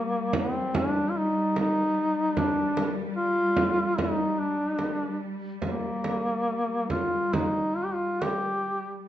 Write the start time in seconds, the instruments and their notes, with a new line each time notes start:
Already playing: cello section G3, duduk A#3
0.33 frame drum
0.39 duduk C4
0.75 duduk D4, frame drum
1.10 duduk F4
1.18 duduk D#4
1.56 duduk D#4, frame drum
2.37 duduk D4, frame drum
2.77 frame drum
3.17 duduk F4
3.57 frame drum
3.98 duduk D#4, frame drum
4.39 duduk D4
4.79 frame drum
5.62 duduk A#3, frame drum
6.04 frame drum
6.90 duduk F4, frame drum
7.33 duduk D#4, frame drum
7.76 duduk F4
7.85 duduk G4
7.94 duduk F4
8.22 duduk G4, frame drum